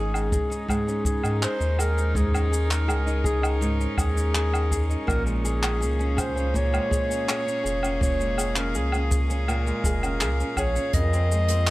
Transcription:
0.00 0.39 G#1 loud
0.00 0.67 G#2 medium
0.00 5.09 G#3 medium
0.00 0.87 C#4 medium
0.00 10.94 C#4 medium
0.00 0.14 D#4 medium
0.00 7.42 D#4 medium
0.00 0.32 G#4 medium
0.00 0.68 G#4 medium
0.14 0.49 D#4 medium
0.14 low woodblock medium
0.14 shaker soft
0.32 1.05 G#4 medium
0.32 kick loud
0.32 shaker medium
0.50 1.23 D#4 medium
0.50 shaker soft
0.68 2.14 G#2 medium
0.68 1.03 G#4 medium
0.68 kick medium
0.68 low woodblock medium
0.68 shaker medium
0.87 2.33 C#4 medium
0.87 shaker soft
1.05 1.42 G#4 medium
1.05 1.40 G#4 medium
1.05 kick medium
1.05 shaker medium
1.14 6.39 A#4 medium
1.24 1.46 G#2 medium
1.24 1.59 D#4 medium
1.24 low woodblock medium
1.24 shaker soft
1.42 1.79 G#4 medium
1.42 1.81 C5 loud
1.42 clap medium
1.42 shaker medium
1.60 2.91 D#2 loud
1.60 1.96 D#4 medium
1.60 shaker soft
1.79 2.51 G#4 medium
1.79 2.18 A#4 medium
1.79 low woodblock medium
1.79 shaker medium
1.97 2.69 D#4 medium
1.97 shaker soft
2.15 3.60 G#2 medium
2.15 2.72 G#4 medium
2.15 kick loud
2.15 shaker medium
2.34 3.80 C#4 medium
2.34 low woodblock medium
2.34 shaker soft
2.52 2.88 G#4 medium
2.52 shaker medium
2.70 3.05 D#4 medium
2.70 3.27 A#4 medium
2.70 clap medium
2.70 shaker medium
2.88 3.87 C#2 medium
2.88 3.24 G#4 medium
2.88 low woodblock medium
2.88 shaker medium
3.06 3.41 D#4 medium
3.06 shaker soft
3.24 3.97 G#4 medium
3.24 3.72 G#4 medium
3.24 kick loud
3.24 shaker medium
3.42 4.15 D#4 medium
3.42 low woodblock medium
3.42 shaker soft
3.61 5.08 G#2 medium
3.61 shaker medium
3.80 5.26 C#4 medium
3.80 shaker soft
3.98 4.96 D#2 medium
3.98 4.34 G#4 medium
3.98 4.33 G#4 medium
3.98 kick medium
3.98 low woodblock medium
3.98 shaker medium
4.16 4.51 D#4 medium
4.16 shaker soft
4.34 4.71 G#4 medium
4.34 4.87 G#4 loud
4.34 clap medium
4.34 shaker medium
4.52 4.88 D#4 medium
4.52 low woodblock medium
4.52 shaker soft
4.71 5.44 G#4 medium
4.71 kick medium
4.71 shaker medium
4.90 5.16 D#4 medium
4.90 shaker soft
5.07 5.83 A#1 medium
5.07 6.53 A#2 medium
5.07 11.70 A#3 medium
5.07 5.24 A#4 loud
5.07 kick loud
5.07 low woodblock medium
5.07 shaker medium
5.26 6.72 G#3 medium
5.26 shaker soft
5.45 5.80 G#4 medium
5.45 6.21 G#4 medium
5.45 shaker medium
5.62 5.98 C#4 medium
5.62 11.70 G#4 medium
5.62 clap medium
5.62 low woodblock medium
5.62 shaker soft
5.81 6.80 C#2 medium
5.81 6.16 G#4 medium
5.81 shaker medium
5.99 6.35 C#4 medium
5.99 11.70 F5 medium
5.99 shaker soft
6.17 6.91 G#4 medium
6.17 6.58 C5 medium
6.17 kick loud
6.17 low woodblock medium
6.17 shaker medium
6.36 7.09 C#4 medium
6.36 shaker soft
6.54 8.00 A#2 medium
6.54 7.29 C#5 loud
6.54 kick medium
6.54 shaker soft
6.73 8.19 G#3 medium
6.73 low woodblock medium
6.73 shaker soft
6.91 7.27 G#4 medium
6.91 kick medium
6.91 shaker medium
7.10 7.45 C#4 medium
7.10 shaker soft
7.28 7.63 G#4 medium
7.28 7.98 C#5 loud
7.28 clap medium
7.28 low woodblock medium
7.28 shaker medium
7.46 7.81 C#4 medium
7.46 shaker soft
7.64 8.76 F1 loud
7.64 8.38 G#4 medium
7.64 shaker medium
7.83 8.56 C#4 medium
7.83 low woodblock medium
7.83 shaker soft
8.01 9.47 A#2 medium
8.01 8.60 C#5 loud
8.01 kick loud
8.01 shaker medium
8.19 9.66 G#3 medium
8.19 shaker soft
8.38 8.75 G#4 medium
8.38 low woodblock medium
8.38 shaker medium
8.56 8.92 C#4 medium
8.56 8.78 A#4 medium
8.56 clap medium
8.56 shaker soft
8.74 9.72 C#2 medium
8.74 9.11 G#4 medium
8.74 9.22 G#4 medium
8.74 shaker medium
8.92 9.29 C#4 medium
8.92 low woodblock medium
8.92 shaker soft
9.11 9.85 G#4 medium
9.11 kick loud
9.11 shaker medium
9.30 10.02 C#4 medium
9.30 shaker soft
9.48 11.02 A#2 medium
9.48 10.54 A#4 medium
9.48 low woodblock medium
9.48 shaker soft
9.67 11.31 G#3 medium
9.67 shaker soft
9.84 10.23 F1 medium
9.84 10.21 G#4 medium
9.84 kick loud
9.84 shaker medium
10.03 10.39 C#4 medium
10.03 low woodblock medium
10.03 shaker soft
10.21 10.43 C#2 medium
10.21 10.58 G#4 medium
10.21 clap medium
10.21 shaker medium
10.40 10.75 C#4 medium
10.40 shaker soft
10.57 10.79 A#1 medium
10.57 11.70 G#4 medium
10.57 10.92 C#5 loud
10.57 kick medium
10.57 low woodblock medium
10.57 shaker medium
10.76 11.01 C#4 medium
10.76 shaker soft
10.93 11.70 F2 loud
10.93 11.70 F2 medium
10.93 11.70 F3 medium
10.93 11.29 A#4 medium
10.93 11.70 D#5 loud
10.93 kick loud
10.93 closed hi-hat medium
10.93 shaker soft
11.13 11.49 C4 medium
11.13 shaker soft
11.32 11.67 G#3 medium
11.32 shaker medium
11.48 11.70 C4 medium
11.48 closed hi-hat medium
11.48 shaker medium
11.67 clap medium
11.67 closed hi-hat medium

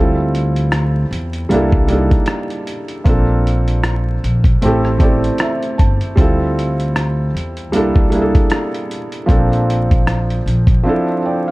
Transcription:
0.00 1.07 D2 loud
0.00 1.01 G3 medium
0.00 1.02 C4 medium
0.00 1.03 E4 medium
0.00 1.03 F4 medium
0.00 1.04 A4 medium
0.35 closed hi-hat medium
0.56 closed hi-hat soft
0.72 cross-stick loud
0.72 closed hi-hat medium
1.11 1.44 E2 medium
1.11 closed hi-hat medium
1.33 closed hi-hat soft
1.49 2.15 C2 medium
1.49 1.82 G3 medium
1.49 1.82 A#3 medium
1.49 1.83 D4 medium
1.49 1.84 E4 medium
1.49 closed hi-hat medium
1.54 1.84 A4 medium
1.72 kick medium
1.87 2.68 G3 medium
1.87 2.68 A#3 medium
1.87 2.69 D4 medium
1.87 1.97 D#4 medium
1.87 closed hi-hat medium
1.93 2.70 A4 medium
1.98 2.73 E4 medium
2.11 kick medium
2.11 closed hi-hat soft
2.26 cross-stick loud
2.26 closed hi-hat medium
2.50 closed hi-hat soft
2.67 closed hi-hat medium
2.88 closed hi-hat soft
3.04 4.19 A#1 loud
3.04 4.13 A#3 medium
3.04 4.13 C4 medium
3.04 4.14 D4 medium
3.04 4.14 F4 medium
3.04 kick loud
3.04 closed hi-hat medium
3.09 4.15 A4 medium
3.47 closed hi-hat medium
3.68 closed hi-hat soft
3.84 cross-stick loud
3.84 closed hi-hat medium
4.24 4.56 A#1 medium
4.24 closed hi-hat medium
4.44 kick medium
4.44 closed hi-hat soft
4.62 5.28 A1 medium
4.62 4.94 A3 medium
4.62 4.95 C4 medium
4.62 4.95 E4 medium
4.62 4.96 G4 medium
4.62 closed hi-hat medium
4.67 4.96 A4 medium
4.85 cross-stick soft
4.98 5.79 A3 medium
4.98 5.80 C4 medium
4.98 5.80 E4 medium
4.98 5.81 G4 medium
4.98 5.37 D5 medium
4.98 kick medium
4.98 closed hi-hat medium
5.04 5.82 A4 medium
5.24 closed hi-hat soft
5.38 5.76 E5 medium
5.38 cross-stick loud
5.38 closed hi-hat medium
5.63 closed hi-hat soft
5.78 5.98 G1 medium
5.78 6.14 A5 medium
5.78 kick loud
5.78 closed hi-hat medium
6.01 closed hi-hat soft
6.16 7.30 D2 loud
6.16 7.24 G3 medium
6.16 7.25 C4 medium
6.16 7.25 E4 medium
6.16 kick loud
6.16 closed hi-hat medium
6.20 7.26 F4 medium
6.20 7.27 A4 medium
6.59 closed hi-hat medium
6.80 closed hi-hat soft
6.96 cross-stick loud
6.96 closed hi-hat medium
7.35 7.74 E2 medium
7.35 closed hi-hat medium
7.57 closed hi-hat soft
7.72 8.39 C2 loud
7.72 8.05 G3 medium
7.72 8.06 A#3 medium
7.72 8.06 D4 medium
7.72 8.07 E4 medium
7.72 closed hi-hat medium
7.77 8.07 A4 medium
7.96 kick medium
8.10 8.91 G3 medium
8.10 8.92 A#3 medium
8.10 8.92 D4 medium
8.10 closed hi-hat medium
8.14 8.93 E4 medium
8.14 8.21 G#4 medium
8.22 8.97 A4 medium
8.35 kick medium
8.35 closed hi-hat soft
8.50 cross-stick loud
8.50 closed hi-hat medium
8.74 closed hi-hat soft
8.91 closed hi-hat medium
9.12 closed hi-hat soft
9.26 10.42 A#1 loud
9.26 10.35 F3 medium
9.26 10.36 A#3 medium
9.26 10.36 C4 medium
9.26 10.37 D4 medium
9.26 kick loud
9.26 closed hi-hat medium
9.31 10.38 A4 medium
9.53 closed hi-hat soft
9.70 closed hi-hat medium
9.91 kick medium
9.91 closed hi-hat soft
10.07 cross-stick loud
10.07 closed hi-hat medium
10.30 closed hi-hat soft
10.46 10.79 A#1 medium
10.46 closed hi-hat medium
10.67 kick medium
10.67 closed hi-hat soft
10.83 11.16 F3 medium
10.83 11.17 C4 medium
10.83 11.18 D4 medium
10.83 11.18 E4 medium
10.89 11.19 A4 medium
11.26 11.46 D5 medium
11.26 11.46 G5 medium
11.48 11.51 F5 medium

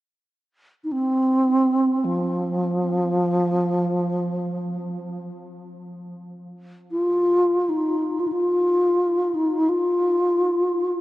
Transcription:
0.84 0.93 D#4 medium
0.92 2.06 C4 medium
2.04 5.30 F3 medium
6.91 7.71 F4 medium
7.69 8.21 D#4 medium
8.20 8.29 F4 medium
8.27 8.34 D#4 medium
8.32 9.36 F4 medium
9.35 9.70 D#4 medium
9.69 11.01 F4 medium

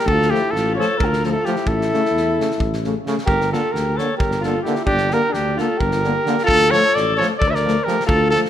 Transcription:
0.00 0.13 G4 medium
0.05 0.31 D2 loud
0.05 0.32 A4 loud
0.05 kick medium
0.12 0.36 F4 medium
0.22 snare soft
0.30 0.40 F3 medium
0.30 0.40 A3 medium
0.30 0.53 G4 medium
0.34 0.57 E4 medium
0.34 snare soft
0.51 0.78 A1 medium
0.51 0.75 A4 medium
0.56 0.79 F4 medium
0.56 snare soft
0.76 0.87 F3 medium
0.76 0.87 A3 medium
0.76 0.99 C#5 medium
0.80 1.06 A4 medium
0.80 snare soft
0.98 1.36 D2 medium
0.98 1.26 A#4 medium
0.98 kick medium
1.04 1.28 F4 medium
1.13 snare soft
1.24 1.33 F3 medium
1.24 1.34 A3 medium
1.24 1.34 F4 medium
1.24 1.27 A4 medium
1.24 snare soft
1.32 1.41 E4 medium
1.32 1.47 A4 medium
1.39 1.53 F4 medium
1.45 1.55 F3 medium
1.45 1.55 A3 medium
1.45 1.70 G4 medium
1.45 snare soft
1.51 1.73 E4 medium
1.56 snare soft
1.66 1.92 A1 medium
1.66 2.84 A4 medium
1.66 kick medium
1.73 2.87 E4 medium
1.81 snare soft
1.93 2.01 C#3 medium
1.93 2.02 A3 medium
1.93 snare soft
2.05 snare soft
2.11 2.38 E2 medium
2.17 snare soft
2.38 2.47 C#3 medium
2.38 2.48 A3 soft
2.38 snare soft
2.51 snare soft
2.58 2.95 A1 medium
2.58 kick medium
2.73 snare soft
2.84 2.93 C#3 medium
2.84 2.94 A3 medium
2.84 snare soft
3.06 3.15 C#3 medium
3.06 3.16 A3 medium
3.06 snare soft
3.18 snare soft
3.26 3.53 G1 medium
3.26 3.49 G4 medium
3.26 3.49 A#4 medium
3.26 kick medium
3.41 snare soft
3.52 3.61 D3 medium
3.52 3.62 A#3 medium
3.52 3.76 F4 medium
3.52 3.74 A4 medium
3.52 snare soft
3.72 3.99 D2 medium
3.72 3.97 G4 medium
3.72 4.00 A#4 medium
3.72 snare soft
3.96 4.07 D3 medium
3.96 4.16 A4 medium
3.96 4.17 C#5 medium
3.96 snare soft
4.01 4.09 A#3 soft
4.17 4.40 G4 medium
4.17 4.41 A#4 medium
4.17 kick medium
4.21 4.58 G1 medium
4.31 snare soft
4.41 4.53 D3 medium
4.41 4.62 F4 medium
4.41 4.62 A4 medium
4.41 snare soft
4.45 4.54 A#3 medium
4.62 4.74 D3 medium
4.62 4.85 E4 medium
4.62 4.84 G4 medium
4.62 snare soft
4.66 4.75 A#3 medium
4.75 snare soft
4.86 5.13 G1 loud
4.86 5.11 D4 medium
4.86 5.15 G4 loud
4.86 kick medium
4.97 snare soft
5.10 5.20 D3 medium
5.10 5.21 A#3 medium
5.10 5.31 G4 medium
5.10 5.35 A#4 medium
5.10 snare soft
5.30 5.56 D4 medium
5.30 5.58 G4 medium
5.34 5.60 D2 medium
5.34 snare soft
5.57 5.67 D3 medium
5.57 5.69 A#3 medium
5.57 5.79 F4 medium
5.57 5.81 A4 medium
5.57 snare soft
5.77 6.18 G1 loud
5.77 6.43 G4 medium
5.77 6.44 A#4 medium
5.77 kick medium
5.91 snare soft
6.04 6.12 D3 medium
6.04 6.15 A#3 medium
6.04 snare soft
6.26 6.35 D3 medium
6.26 6.36 A#3 medium
6.26 snare soft
6.38 snare soft
6.44 6.72 F4 medium
6.44 6.73 A4 loud
6.48 6.74 D2 medium
6.48 kick medium
6.61 snare soft
6.71 6.80 F3 medium
6.71 6.94 A4 medium
6.71 6.97 C#5 loud
6.71 snare soft
6.75 6.83 A3 medium
6.94 7.21 A1 medium
6.94 7.19 A4 medium
6.94 7.16 D5 medium
6.94 snare soft
7.17 7.28 F3 medium
7.17 7.29 A4 medium
7.17 7.27 C#5 medium
7.21 7.31 A3 medium
7.21 snare soft
7.38 7.78 D2 medium
7.38 7.50 A4 medium
7.38 7.52 D5 medium
7.38 kick medium
7.48 7.55 C#5 medium
7.48 7.57 E5 medium
7.53 7.88 A#4 medium
7.53 7.86 D5 medium
7.53 snare soft
7.64 7.73 F3 medium
7.64 7.76 A3 medium
7.64 snare soft
7.84 7.96 F3 medium
7.84 8.06 G4 medium
7.84 8.06 A#4 medium
7.84 snare soft
7.90 7.98 A3 medium
8.00 snare soft
8.07 8.33 D2 loud
8.07 8.30 F4 medium
8.07 8.30 A4 loud
8.07 kick loud
8.31 8.42 F3 medium
8.31 8.42 F4 medium
8.31 8.41 A4 loud
8.35 8.43 A3 medium
8.35 snare soft
8.45 snare soft

